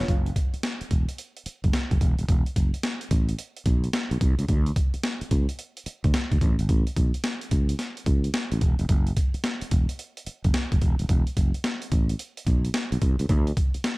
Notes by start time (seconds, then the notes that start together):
Already playing: B3 D4 F4
0.08 F#1, kick, closed hi-hat
0.26 closed hi-hat
0.36 kick, closed hi-hat
0.54 muted fretless electric bass stroke, closed hi-hat
0.63 snare, closed hi-hat
0.81 muted fretless electric bass stroke, closed hi-hat
0.91 E1, kick, closed hi-hat
1.09 closed hi-hat
1.18 closed hi-hat
1.37 closed hi-hat
1.46 muted fretless electric bass stroke, closed hi-hat
1.64 F#1, kick, closed hi-hat
1.73 snare, closed hi-hat
1.91 F#1, kick, closed hi-hat
2.01 E1, kick, closed hi-hat
2.19 D#1, closed hi-hat
2.29 E1, kick, closed hi-hat
2.46 closed hi-hat
2.56 F#1, kick, closed hi-hat
2.74 closed hi-hat
2.83 snare, closed hi-hat
3.01 closed hi-hat
3.11 A1, kick, closed hi-hat
3.29 closed hi-hat
3.39 closed hi-hat
3.57 closed hi-hat
3.66 B1, kick, closed hi-hat
3.84 closed hi-hat
3.93 snare, closed hi-hat
4.11 B1, closed hi-hat
4.21 C2, kick, closed hi-hat
4.39 C#2, closed hi-hat
4.48 D2, kick, closed hi-hat
4.66 closed hi-hat
4.76 kick, closed hi-hat
4.94 muted fretless electric bass stroke, closed hi-hat
5.04 snare, closed hi-hat
5.21 muted fretless electric bass stroke, closed hi-hat
5.31 C#2, kick, closed hi-hat
5.49 closed hi-hat
5.59 closed hi-hat
5.77 closed hi-hat
5.86 muted fretless electric bass stroke, closed hi-hat
6.04 D2, kick, closed hi-hat
6.14 snare, closed hi-hat
6.32 D2, kick, closed hi-hat
6.41 A1, kick, closed hi-hat
6.59 G#1, closed hi-hat
6.69 A1, kick, closed hi-hat
6.87 closed hi-hat
6.97 B1, kick, closed hi-hat
7.14 closed hi-hat
7.24 snare, closed hi-hat
7.41 closed hi-hat
7.51 C#2, kick, closed hi-hat
7.69 closed hi-hat
7.79 snare, closed hi-hat
7.97 closed hi-hat
8.06 C#2, kick, closed hi-hat
8.24 closed hi-hat
8.34 snare, closed hi-hat
8.52 A1, closed hi-hat
8.61 E1, kick, closed hi-hat
8.79 F1, closed hi-hat
8.89 F#1, kick, closed hi-hat
9.07 closed hi-hat
9.17 kick, closed hi-hat
9.34 muted fretless electric bass stroke, closed hi-hat
9.44 snare, closed hi-hat
9.61 muted fretless electric bass stroke, closed hi-hat
9.71 E1, kick, closed hi-hat
9.89 closed hi-hat
9.99 closed hi-hat
10.17 closed hi-hat
10.26 muted fretless electric bass stroke, closed hi-hat
10.44 F#1, kick, closed hi-hat
10.54 snare, closed hi-hat
10.72 F#1, kick, closed hi-hat
10.81 E1, kick, closed hi-hat
10.99 D#1, closed hi-hat
11.09 E1, kick, closed hi-hat
11.27 closed hi-hat
11.37 F#1, kick, closed hi-hat
11.54 closed hi-hat
11.64 snare, closed hi-hat
11.82 closed hi-hat
11.92 A1, kick, closed hi-hat
12.09 closed hi-hat
12.19 closed hi-hat
12.37 closed hi-hat
12.47 B1, kick, closed hi-hat
12.65 closed hi-hat
12.74 snare, closed hi-hat
12.92 B1, closed hi-hat
13.02 C2, kick, closed hi-hat
13.19 C#2, closed hi-hat
13.29 D2, kick, closed hi-hat
13.47 closed hi-hat
13.57 kick, closed hi-hat
13.74 muted fretless electric bass stroke, closed hi-hat
13.84 snare, closed hi-hat